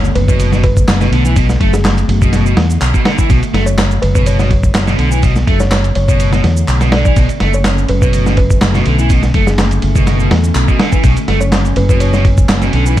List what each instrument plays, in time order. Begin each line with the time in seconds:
Already playing: fingered electric bass F#1, ambient pad D3 A3 B3, sub drop
0.05 shaker
0.15 fingered electric bass F#1, kalimba B4, ride
0.28 overdriven electric guitar B2, kalimba B4, kick, shaker
0.40 ride, shaker
0.52 overdriven electric guitar B2, snare, shaker
0.63 kalimba B4, kick, ride
0.77 kick, shaker
0.88 fingered electric bass F#1, snare, clap, ride, shaker
1.01 overdriven electric guitar B2, snare, shaker
1.12 fingered electric bass B1, overdriven electric guitar D3, ride
1.25 overdriven electric guitar E3, shaker
1.36 overdriven electric guitar B2, kick, ride, shaker
1.49 snare, shaker
1.60 fingered electric bass F#1, overdriven electric guitar A3, kick, ride
1.73 kalimba G#4, snare, shaker
1.85 snare, clap, ride, shaker
1.98 ride, shaker
2.08 fingered electric bass F#1, ride
2.22 overdriven electric guitar B2, kick, shaker
2.33 snare, ride, shaker
2.46 overdriven electric guitar B2, shaker
2.57 fingered electric bass E2, snare, ride
2.70 shaker
2.81 fingered electric bass B1, clap, ride, shaker
2.94 overdriven electric guitar B2, kick, shaker
3.05 overdriven electric guitar D3, snare, ride
3.18 overdriven electric guitar E3, kick, shaker
3.29 fingered electric bass B1, overdriven electric guitar B2, kick, ride, shaker
3.43 ride, shaker
3.53 fingered electric bass F#1, overdriven electric guitar A3, snare, ride
3.66 kalimba C#5, shaker
3.78 snare, clap, ride, shaker
3.91 shaker
4.02 fingered electric bass F#1, kalimba B4, ride
4.15 overdriven electric guitar B2, kalimba B4, kick, shaker
4.26 kalimba C#5, ride, shaker
4.39 overdriven electric guitar B2, kalimba C#5, snare, shaker
4.51 kick, ride
4.63 kick, shaker
4.75 fingered electric bass F#1, snare, clap, ride, shaker
4.88 overdriven electric guitar B2, snare, shaker
4.98 fingered electric bass B1, overdriven electric guitar D3, ride
5.12 overdriven electric guitar E3, shaker
5.23 overdriven electric guitar B2, kick, ride, shaker
5.36 snare, shaker
5.47 fingered electric bass F#1, overdriven electric guitar A3, kick, ride
5.60 kalimba C#5, snare, shaker
5.71 kalimba C#5, snare, clap, ride, shaker
5.84 ride, shaker
5.95 fingered electric bass F#1, kalimba C#5, ride
6.08 overdriven electric guitar B2, kalimba C#5, kick, shaker
6.20 ride, shaker
6.32 overdriven electric guitar B2, snare, shaker
6.44 fingered electric bass E2, snare, ride
6.57 shaker
6.68 fingered electric bass B1, clap, ride, shaker
6.81 overdriven electric guitar B2, snare, shaker
6.92 overdriven electric guitar D3, kalimba D5, snare, ride
7.05 overdriven electric guitar E3, kalimba D5, kick, shaker
7.16 fingered electric bass B1, overdriven electric guitar B2, ambient pad A3 C#4, kick, ride, shaker
7.29 ride, shaker
7.40 fingered electric bass F#1, overdriven electric guitar A3, snare, ride
7.54 kalimba C#5, shaker
7.64 snare, clap, ride, shaker
7.78 shaker
7.88 fingered electric bass F#1, kalimba B4, ride
8.02 overdriven electric guitar B2, kalimba B4, kick, shaker
8.13 ride, shaker
8.26 overdriven electric guitar B2, snare, shaker
8.37 kalimba B4, kick, ride
8.50 kick, shaker
8.61 fingered electric bass F#1, snare, clap, ride, shaker
8.75 overdriven electric guitar B2, snare, shaker
8.86 fingered electric bass B1, overdriven electric guitar D3, ride
8.99 overdriven electric guitar E3, shaker
9.10 overdriven electric guitar B2, kick, ride, shaker
9.23 snare, shaker
9.34 fingered electric bass F#1, overdriven electric guitar A3, kick, ride
9.47 kalimba G#4, snare, shaker
9.58 snare, clap, ride, shaker
9.71 ride, shaker
9.82 fingered electric bass F#1, ride
9.95 overdriven electric guitar B2, kick, shaker
10.07 snare, ride, shaker
10.20 overdriven electric guitar B2, shaker
10.31 fingered electric bass E2, snare, ride
10.44 shaker
10.55 fingered electric bass B1, clap, ride, shaker
10.68 overdriven electric guitar B2, kick, shaker
10.79 overdriven electric guitar D3, snare, ride
10.92 overdriven electric guitar E3, kick, shaker
11.04 fingered electric bass B1, overdriven electric guitar B2, kick, ride, shaker
11.17 ride, shaker
11.28 fingered electric bass F#1, overdriven electric guitar A3, snare, ride
11.41 kalimba C#5, shaker
11.52 snare, clap, ride, shaker
11.65 shaker
11.76 fingered electric bass F#1, kalimba B4, ride
11.89 overdriven electric guitar B2, kalimba B4, kick, shaker
12.00 kalimba C#5, ride, shaker
12.13 overdriven electric guitar B2, kalimba C#5, snare, shaker
12.25 kick, ride
12.38 kick, shaker
12.49 fingered electric bass F#1, snare, clap, ride, shaker
12.62 overdriven electric guitar B2, snare, shaker
12.73 fingered electric bass B1, overdriven electric guitar D3, ride
12.86 overdriven electric guitar E3, shaker